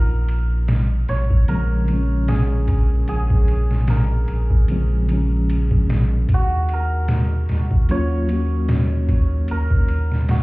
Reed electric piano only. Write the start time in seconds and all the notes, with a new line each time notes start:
1.48 C#3 F3 G#3 C4
1.86 C#3 F3
1.90 G#3 C#4
4.68 C#3 F3 G#3 C4
5.07 C#3 F3
5.11 G#3 C#4
7.89 F#3 A#3 C#4 F4
8.27 F#3 A#3
8.31 C#4 F#4